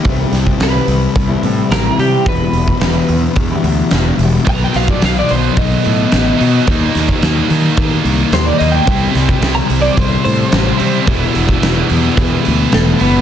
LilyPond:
<<
  \new Staff \with { instrumentName = "Clean electric guitar" } { \time 4/4 \key c \lydian \tempo 4 = 109 r4 b'2 bes'8 g'8 | b'2 r2 | bes''16 g''16 f''16 d''16 f''16 d''16 c''8 dis''2~ | dis''4 r2 c''16 d''16 ees''16 g''16~ |
g''4~ g''16 bes''16 g''16 d''16 c''8 c''4. | r2. <a a'>8 <b b'>8 | }
  \new Staff \with { instrumentName = "Clean electric guitar" } { \clef bass \time 4/4 \key c \lydian <c e g c' e'>8 <e g c' e'>8 <c e g c' e'>16 <g c' e'>8. r16 <g c' e'>16 <e g c' e'>8 <c e g c' e'>16 <g c' e'>16 <e g c' e'>16 <g c' e'>16 | <e, b, e g b e'>8 <e g b e'>8 <e, b, e g b e'>16 <e g b e'>8. r16 <e g b e'>16 <e g b e'>8 <e, b, e g b e'>16 <e g b e'>16 <e g b e'>16 <e g b e'>16 | r1 | r1 |
r1 | r1 | }
  \new Staff \with { instrumentName = "Distorted electric guitar" } { \clef bass \time 4/4 \key c \lydian r1 | r1 | <b, dis fis b dis'>2.~ <b, dis fis b dis'>8 <b, dis fis b dis'>8 | <ees g bes ees'>2.~ <ees g bes ees'>8 <ees g bes ees'>8 |
<c g c' e'>2.~ <c g c' e'>8 <c g c' e'>8 | <e g b e'>2.~ <e g b e'>8 <e g b e'>8 | }
  \new Staff \with { instrumentName = "Distorted electric guitar" } { \clef bass \time 4/4 \key c \lydian <c g c'>1 | <e, b, e>1 | <b, fis b>1 | <ees bes ees'>1 |
<c g c'>1 | <e, b, e>1 | }
  \new Staff \with { instrumentName = "Fingered electric bass" } { \clef bass \time 4/4 \key c \lydian c,8 c,8 c,8 c,8 c,8 a,8 a,,8 c8 | e,,8 e,,8 e,,8 e,8 e,8 d,8 e,,8 e,,8 | b,,8 b,,8 b,,8 b,,8 b,,8 a,8 a,,8 b,8 | ees,8 ees,8 ees,8 ees8 ees8 c,8 ees,8 ees,8 |
c,8 c,8 c,8 c,8 c,8 a,8 a,,8 c8 | e,,8 e,,8 e,,8 e,8 e,8 d,8 e,,8 fis,,8 | }
  \new DrumStaff \with { instrumentName = "Drums" } \drummode { \time 4/4 <hho bd>8 <hho sn>16 bd16 <hho sn>8 hho8 <hho bd>8 hho8 <hho sn>8 hho8 | <hho bd>8 hho16 bd16 <hho sn>8 hho8 <hho bd>8 hho8 <hho sn>8 hho8 | <hho bd>8 <hho sn>16 bd16 <hho sn>8 hho8 <hho bd>8 hho8 <hho sn>8 hho8 | <hho bd>8 <hho sn>16 bd16 <hho sn>8 hho8 <hho bd>8 hho8 <hho sn>8 hho8 |
<hho bd>8 <hho sn>16 bd16 <hho sn>8 hho8 <hho bd>8 hho8 <hho sn>8 hho8 | <hho bd>8 hho16 bd16 <hho sn>8 hho8 <hho bd>8 hho8 <hho sn>8 hho8 | }
>>